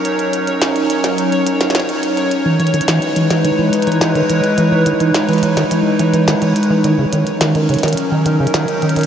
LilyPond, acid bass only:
\new Staff \with { instrumentName = "Acid bass" } { \clef bass \time 4/4 \key ees \phrygian \tempo 4 = 106 r1 | r16 e16 e16 dis16 e16 r16 e16 e16 dis16 e16 r16 e16 e16 dis16 e16 r16 | e16 e16 dis16 e16 r16 e16 e16 dis16 e16 r16 e16 e16 dis16 e16 r16 e16 | ees16 des16 ees16 r16 ees16 ees16 des16 ees16 r16 ees16 ees16 des16 ees16 r16 ees16 ees16 | }